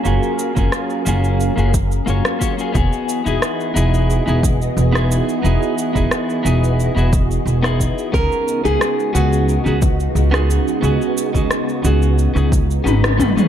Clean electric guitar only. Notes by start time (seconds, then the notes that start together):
0.03 A#3 C#4 F4 F#4 G#4
0.55 A#3 C#4 F4 F#4 G#4
1.05 A#3 C#4 F4 F#4 G#4
1.56 A#3 C#4 F4 F#4 G#4
2.06 A#3 C#4 F4 F#4 C#5
2.39 A#3 C#4 F4 F#4 C#5
2.57 A#3 C#4 F4 F#4 G#4
2.72 B3 E4 F#4
2.77 G#4
3.24 B3 D#4 E4 G#4
3.74 B3 D#4 E4 G#4
4.26 B3 D#4 E4 G#4
4.92 B3 D#4 E4 G#4
5.42 B3 D#4 E4 G#4
5.93 B3 D#4 E4 G#4
6.43 B3 D#4 E4 G#4
6.95 B3 D#4 E4 F#4 G#4
7.63 B3 D#4 E4 G#4
8.12 B3 C#4 D#4 G#4
8.64 B3 C#4 D#4
8.68 G#4
9.13 B3 C#4 F#4 G#4
9.64 B3 C#4 F#4 G#4
10.31 B3 C#4 D#4 G#4
10.81 B3 C#4 F#4 G#4
11.33 B3 C#4 F#4
11.37 G#4
11.82 B3 C#4 F#4
11.87 G#4
12.34 B3 C#4 D#4 G#4
12.84 B3 C#4 D#4 B4
13.18 B3 C#4 D#4 B4
13.36 B3 C#4 D#4 G#4